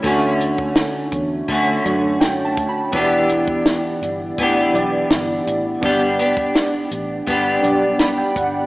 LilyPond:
<<
  \new Staff \with { instrumentName = "Synth keys" } { \time 4/4 \key e \dorian \tempo 4 = 83 << { r2. \tuplet 3/2 { g''8 a''8 b''8 } | r1 | r2. b''16 g''16 fis''8 | } \\ { <a d' fis' cis''>2 r8 <a d' fis' cis''>4. | <b e' fis' g' d''>2 r8 <b e' g' d''>4. | <b d' g' d''>2 r8 <b d' g' d''>4. | } >> }
  \new Staff \with { instrumentName = "Clean electric guitar" } { \time 4/4 \key e \dorian <d a cis' fis'>2 <d a cis' fis'>2 | <e b d' g'>2 <e b d' g'>2 | <g b d' g'>8 <b d' g'>4. <g b d' g'>2 | }
  \new Staff \with { instrumentName = "Fingered electric bass" } { \clef bass \time 4/4 \key e \dorian d,4. e,8 d,8 fis,4 d,8 | e,,4. g,,8 a,,8 b,,8 g,,8 a,,8 | g,,4. a,,8 g,,8 b,,4 g,,8 | }
  \new DrumStaff \with { instrumentName = "Drums" } \drummode { \time 4/4 <hh bd>8 hh16 bd16 <hh sn>8 <hh bd>8 <hh bd>8 hh8 <hh sn>8 <hh bd>8 | <hh bd>8 hh16 bd16 <hh sn>8 hh8 <hh bd>8 hh8 <hh sn>8 hh8 | <hh bd>8 hh16 bd16 <hh sn>8 hh8 <hh bd>8 hh8 <hh sn>8 <hh bd>8 | }
>>